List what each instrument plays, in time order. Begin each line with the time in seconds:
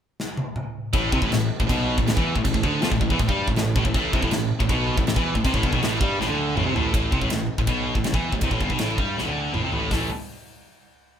0.20 snare
0.37 high tom
0.56 mid tom
0.93 picked electric bass A1, distorted electric guitar A2, kick, crash
1.12 picked electric bass C2, distorted electric guitar C3, kick
1.22 picked electric bass A1, distorted electric guitar A2, kick
1.32 picked electric bass A1, distorted electric guitar A2, snare, crash
1.60 picked electric bass A1, distorted electric guitar A2, kick
1.69 picked electric bass B1, distorted electric guitar B2, kick, crash
1.98 picked electric bass A1, distorted electric guitar A2, kick
2.07 picked electric bass A1, distorted electric guitar A2, snare, crash
2.17 picked electric bass E2, distorted electric guitar E3, kick
2.36 picked electric bass A1, distorted electric guitar A2, kick
2.45 picked electric bass A1, distorted electric guitar A2, kick, crash
2.54 picked electric bass A1, distorted electric guitar A2, kick
2.63 picked electric bass D2, distorted electric guitar D3, kick
2.82 picked electric bass F2, distorted electric guitar F3, snare, crash
2.91 picked electric bass A1, distorted electric guitar A2, kick
3.01 picked electric bass A1, distorted electric guitar A2, kick
3.10 picked electric bass E2, distorted electric guitar E3, kick
3.19 picked electric bass A1, distorted electric guitar A2, kick, crash
3.29 picked electric bass G2, distorted electric guitar G3, kick
3.47 picked electric bass A1, distorted electric guitar A2, kick
3.56 picked electric bass A1, distorted electric guitar A2, snare, crash
3.76 picked electric bass A1, distorted electric guitar A2, kick
3.85 picked electric bass A1, distorted electric guitar A2, kick
3.94 picked electric bass A1, distorted electric guitar A2, kick, crash
4.13 picked electric bass C2, distorted electric guitar C3, kick
4.22 picked electric bass A1, distorted electric guitar A2, kick
4.31 picked electric bass A1, distorted electric guitar A2, snare, crash
4.60 picked electric bass A1, distorted electric guitar A2, kick
4.69 picked electric bass B1, distorted electric guitar B2, kick, crash
4.97 picked electric bass A1, distorted electric guitar A2, kick
5.07 picked electric bass A1, distorted electric guitar A2, snare, crash
5.16 picked electric bass E2, distorted electric guitar E3, kick
5.35 picked electric bass A1, distorted electric guitar A2, kick
5.44 picked electric bass C2, distorted electric guitar C3, kick, crash
5.54 picked electric bass A1, distorted electric guitar A2, kick
5.63 picked electric bass G1, distorted electric guitar G2, kick
5.73 picked electric bass B1, distorted electric guitar B2, kick
5.81 picked electric bass A1, distorted electric guitar A2, snare, crash
6.00 picked electric bass G2, distorted electric guitar G3, kick
6.18 picked electric bass A1, distorted electric guitar A2, snare
6.28 picked electric bass D2, distorted electric guitar D3
6.56 picked electric bass A1, distorted electric guitar A2, mid tom
6.65 picked electric bass C2, distorted electric guitar C3
6.74 picked electric bass A1, distorted electric guitar A2, floor tom
6.94 picked electric bass A1, distorted electric guitar A2, kick, ride bell
7.12 picked electric bass C2, distorted electric guitar C3, kick
7.21 picked electric bass A1, distorted electric guitar A2, kick
7.30 picked electric bass A1, distorted electric guitar A2, snare, ride bell
7.58 picked electric bass A1, distorted electric guitar A2, kick
7.67 picked electric bass B1, distorted electric guitar B2, kick, ride bell
7.95 picked electric bass A1, distorted electric guitar A2, kick
8.04 picked electric bass A1, distorted electric guitar A2, snare, ride bell
8.13 picked electric bass E2, distorted electric guitar E3, kick
8.32 picked electric bass A1, distorted electric guitar A2, kick
8.41 picked electric bass C2, distorted electric guitar C3, kick, ride bell
8.51 picked electric bass A1, distorted electric guitar A2, kick
8.61 picked electric bass G1, distorted electric guitar G2, kick
8.70 picked electric bass B1, distorted electric guitar B2, kick
8.79 picked electric bass A1, distorted electric guitar A2, snare, ride bell
8.98 picked electric bass G2, distorted electric guitar G3, kick
9.17 picked electric bass A1, distorted electric guitar A2, snare
9.26 picked electric bass D2, distorted electric guitar D3
9.53 picked electric bass A1, distorted electric guitar A2, mid tom
9.63 picked electric bass C2, distorted electric guitar C3
9.72 picked electric bass A1, distorted electric guitar A2, floor tom
9.91 picked electric bass A1, distorted electric guitar A2 E3 A3, kick, snare, open hi-hat